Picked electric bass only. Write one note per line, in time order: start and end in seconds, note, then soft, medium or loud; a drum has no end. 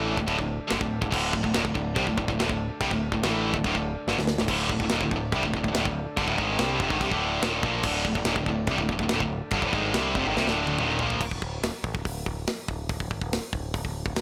0.00 0.16 A1 loud
0.17 0.27 D1 medium
0.28 0.38 D1 medium
0.39 0.58 D1 medium
0.72 0.80 G1 loud
0.81 1.00 D1 medium
1.02 1.11 D1 medium
1.12 1.32 D1 medium
1.33 1.43 D1 medium
1.44 1.54 D1 medium
1.56 1.64 D#1 loud
1.65 1.74 D1 medium
1.75 1.95 D1 medium
1.96 2.06 C2 medium
2.07 2.17 D1 medium
2.17 2.27 D1 medium
2.28 2.38 D1 medium
2.40 2.49 D1 medium
2.49 2.69 D1 medium
2.81 2.91 C2 loud
2.91 3.11 D1 medium
3.12 3.22 D1 medium
3.24 3.53 A1 loud
3.54 3.64 D1 medium
3.64 3.74 D1 medium
3.75 3.95 D1 medium
4.07 4.17 G1 medium
4.18 4.38 D1 medium
4.40 4.48 D1 medium
4.48 4.68 D1 loud
4.69 4.79 D1 medium
4.80 4.90 D1 medium
4.92 5.00 D#1 loud
5.01 5.11 D1 medium
5.11 5.31 D1 medium
5.33 5.42 C2 medium
5.43 5.53 D1 medium
5.54 5.63 D1 medium
5.64 5.74 D1 medium
5.76 5.85 D1 medium
5.85 6.05 D1 medium
6.17 6.27 G1 loud
6.28 6.38 D1 loud
6.38 6.58 G#1 medium
6.59 6.79 C2 loud
6.79 6.90 F1 medium
6.90 7.00 G#1 loud
7.01 7.11 C2 medium
7.11 7.41 D1 medium
7.42 7.62 D#1 medium
7.63 7.83 A#1 medium
7.84 8.04 D1 loud
8.05 8.15 D1 medium
8.16 8.24 D1 medium
8.24 8.35 D#1 loud
8.36 8.46 D1 medium
8.46 8.67 D1 medium
8.68 8.78 C2 medium
8.79 8.89 D1 medium
8.89 8.98 D1 medium
8.99 9.10 D1 medium
9.12 9.20 D1 medium
9.21 9.41 D1 medium
9.52 9.61 G1 loud
9.61 9.72 D1 loud
9.73 9.93 G#1 medium
9.94 10.14 C2 loud
10.15 10.26 F1 medium
10.27 10.36 G#1 loud
10.37 10.47 C2 medium
10.48 10.77 D1 medium
10.79 10.99 D#1 medium
11.00 11.20 A#1 medium
11.21 11.30 D1 medium
11.31 11.41 D#1 medium
11.42 11.61 D1 loud
11.62 11.72 D#1 medium
11.73 muted picked electric bass stroke soft
11.84 11.94 A1 medium
11.94 12.04 D1 medium
12.05 12.25 D1 medium
12.27 12.46 D1 medium
12.69 12.88 D1 medium
12.89 12.99 D1 medium
13.01 13.10 D1 medium
13.10 13.20 G#1 medium
13.22 13.41 D1 medium
13.42 muted picked electric bass stroke soft
13.53 13.72 D1 medium
13.74 13.84 D1 medium
13.84 14.04 D1 medium
14.06 14.15 D1 medium
14.15 14.21 D1 medium